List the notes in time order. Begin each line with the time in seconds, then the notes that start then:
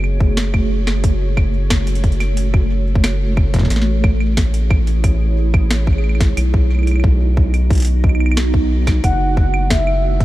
Already playing: F#1 A3 F#4 G#4 C#5
0.04 claves
0.20 kick
0.37 snare, closed hi-hat
0.54 kick, claves
0.87 snare, closed hi-hat, claves
1.04 A4, kick, closed hi-hat
1.37 kick, claves
1.70 kick, snare, closed hi-hat, claves
1.87 closed hi-hat
1.95 closed hi-hat
2.04 kick, closed hi-hat
2.12 closed hi-hat
2.20 closed hi-hat, claves
2.37 closed hi-hat
2.54 kick, claves
2.95 kick
3.04 snare, closed hi-hat, claves
3.37 kick, claves
3.54 kick, snare, closed hi-hat
3.56 kick
3.59 kick, snare
3.61 kick
3.63 kick, snare
3.66 kick
3.68 A1 E4 G#4 C#5, kick, snare, closed hi-hat
3.76 snare
3.82 snare
4.04 kick, claves
4.20 claves
4.37 kick, snare, closed hi-hat
4.54 closed hi-hat
4.71 kick, claves
4.87 closed hi-hat
5.04 kick, closed hi-hat, claves
5.54 kick, claves
5.71 snare, closed hi-hat
5.87 kick, claves
5.93 claves
5.98 claves
6.04 claves
6.09 claves
6.15 claves
6.21 kick, snare, closed hi-hat
6.37 B1 B3 D#4 F#4 D#5, closed hi-hat, claves
6.54 kick
6.71 claves
6.75 claves
6.79 claves
6.83 claves
6.87 closed hi-hat, claves
6.91 claves
6.96 claves
7.00 claves
7.04 kick
7.37 kick
7.54 closed hi-hat, claves
7.70 kick, closed hi-hat
7.73 closed hi-hat
7.75 closed hi-hat
7.78 closed hi-hat
7.80 closed hi-hat
7.82 closed hi-hat
7.85 closed hi-hat
7.87 closed hi-hat
8.04 kick, claves
8.09 claves
8.15 claves
8.20 claves
8.26 claves
8.32 claves
8.37 snare, closed hi-hat, claves
8.54 kick
8.87 kick, snare, closed hi-hat, claves
9.04 F#1 G#3 A3 F#4 C#5 F#5, kick, closed hi-hat, claves
9.37 kick
9.54 claves
9.70 E5, kick, snare, closed hi-hat
9.87 claves
10.20 kick, closed hi-hat